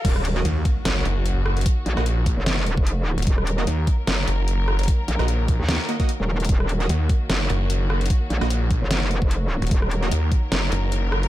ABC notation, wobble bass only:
X:1
M:4/4
L:1/16
Q:"Swing 16ths" 1/4=149
K:Ebm
V:1 name="Wobble bass" clef=bass
E,,,4 z4 G,,,2 z6 | z2 B,,, z4 G,,,4 F,,,4 z | E,,,4 z4 G,,,2 z6 | z2 B,,, z4 E,,2 z4 E,,,3 |
E,,,4 z4 G,,,2 z6 | z2 B,,, z4 G,,,4 F,,,4 z | E,,,4 z4 G,,,2 z6 |]